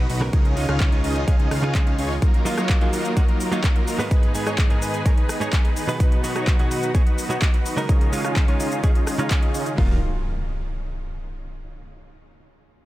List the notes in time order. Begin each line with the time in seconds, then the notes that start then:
Already playing: D#3 F#3 B3 F#4
0.10 B1 D#4 F#4 B4, open hi-hat
0.21 C#3 G#3 C#4 D#4 A#4, cross-stick
0.33 C#2 D#3 G#3 C#4 D#4 F4 G#4 D#5, kick, closed hi-hat
0.45 closed hi-hat
0.56 C#3 G#3 C#4 D#4 F4, open hi-hat
0.69 C#2 C#4 D#4 F4 G#4 F5, cross-stick, closed hi-hat
0.80 kick, clap, closed hi-hat
0.92 C#2 C#3 G#3 C#4 D#4 F4 G#4 C#5, closed hi-hat
1.04 C#2 C#4 D#4 F4 G#4 D#5, open hi-hat
1.16 closed hi-hat
1.27 C#2 C#3 G#3 C#4 D#4 F4 G#4 F5, kick, closed hi-hat
1.40 C#2 C#4 D#4 F4 G#4 D#5, closed hi-hat
1.51 C#2 C#4 D#4 F4 G#4 F5, cross-stick, open hi-hat
1.63 C#3 G#3 C#4 D#4 F4, closed hi-hat
1.74 C#3 G#3 C#4 D#4 G#4, kick, clap, closed hi-hat
1.87 C#2 C#4 D#4 F4 G#4 F5, closed hi-hat
1.99 C#2 C#4 D#4 F4 G#4 C#5, open hi-hat
2.22 D#3 F#3 A#3 D#4 F4 A#4, kick, closed hi-hat, shaker
2.34 closed hi-hat
2.45 F#3 A#3 D#4 F4, open hi-hat, shaker
2.58 F#3 A#3 D#4 F4 C#5, cross-stick, closed hi-hat, shaker
2.69 kick, clap, closed hi-hat, shaker
2.81 F#3 A#3 D#4 F4 G#4, closed hi-hat
2.93 F#3 A#3 D#4 F4 A#4, open hi-hat, shaker
3.05 closed hi-hat, shaker
3.16 F#3 A#3 D#4 F4 F#4 C#5, kick, closed hi-hat, shaker
3.29 F#3 A#3 D#4 F4 A#4, closed hi-hat
3.40 open hi-hat, shaker
3.52 F#3 A#3 D#4 F4 C#5, closed hi-hat, shaker
3.64 kick, clap, closed hi-hat, shaker
3.76 F#3 A#3 D#4 F4 A#4, closed hi-hat
3.87 F#3 A#3 D#4 F4 A#4, open hi-hat, shaker
3.98 G#2 G#3 B3 D#4 B4, cross-stick, shaker
4.11 G#3 B3 D#4 G#4 B4, kick, closed hi-hat, shaker
4.23 closed hi-hat
4.34 G#2 G#3 B3 D#4 G#4, open hi-hat, shaker
4.47 D#4 G#4 C#5, cross-stick, closed hi-hat, shaker
4.58 kick, clap, closed hi-hat, shaker
4.70 G#2 G#3 B3 D#4 G#4 A#4, closed hi-hat
4.82 D#4 G#4 B4, open hi-hat, shaker
4.94 closed hi-hat, shaker
5.05 G#2 G#3 B3 D#4 G#4 A#4 C#5, kick, closed hi-hat, shaker
5.17 D#4 G#4 B4, closed hi-hat
5.29 cross-stick, open hi-hat, shaker
5.40 G#2 G#3 B3 D#4 G#4 C#5, closed hi-hat, shaker
5.53 kick, clap, closed hi-hat, shaker
5.65 D#4 G#4 B4, closed hi-hat
5.76 D#4 G#4 B4, open hi-hat, shaker
5.88 B2 F#3 B3 D#4 B4, shaker
6.00 F#3 D#4 F#4 B4, kick, closed hi-hat, shaker
6.12 closed hi-hat
6.23 B2 F#3 B3 D#4 F#4, open hi-hat, shaker
6.36 D#4 F#4 C#5, cross-stick, closed hi-hat, shaker
6.47 kick, clap, closed hi-hat, shaker
6.58 B2 F#3 B3 D#4 F#4 G#4, closed hi-hat
6.71 D#4 F#4 B4, open hi-hat, shaker
6.83 closed hi-hat, shaker
6.94 B2 F#3 B3 D#4 F#4 G#4 C#5, kick, closed hi-hat, shaker
7.07 D#4 F#4 B4, closed hi-hat
7.18 open hi-hat, shaker
7.29 B2 F#3 B3 D#4 F#4 C#5, closed hi-hat, shaker
7.42 kick, clap, closed hi-hat, shaker
7.54 D#4 F#4 B4, closed hi-hat
7.66 D#4 F#4 B4, open hi-hat, shaker
7.77 C#3 G#3 C#4 D#4 A#4, cross-stick, shaker
7.89 D#3 G#3 C#4 D#4 F4 G#4 D#5, kick, closed hi-hat, shaker
8.01 closed hi-hat
8.12 C#3 G#3 C#4 D#4 F4, open hi-hat, shaker
8.25 C#4 D#4 F4 G#4 F5, cross-stick, closed hi-hat, shaker
8.36 kick, clap, closed hi-hat, shaker
8.47 C#3 G#3 C#4 D#4 F4 G#4 C#5, closed hi-hat
8.60 C#4 D#4 F4 G#4 D#5, open hi-hat, shaker
8.72 closed hi-hat, shaker
8.83 C#3 G#3 C#4 D#4 F4 G#4 F5, kick, closed hi-hat, shaker
8.95 C#4 D#4 F4 G#4 D#5, closed hi-hat
9.07 cross-stick, open hi-hat, shaker
9.18 C#3 G#3 C#4 D#4 F4 G#4 F5, closed hi-hat, shaker
9.30 C#3 G#3 C#4 D#4 G#4, kick, clap, closed hi-hat, shaker
9.43 C#4 D#4 F4 G#4 D#5, closed hi-hat
9.54 C#4 D#4 F4 G#4 D#5, open hi-hat, shaker
9.66 closed hi-hat, shaker
9.76 D#2 D#3 F#3 A#3 D#4 F4 A#4, kick, impact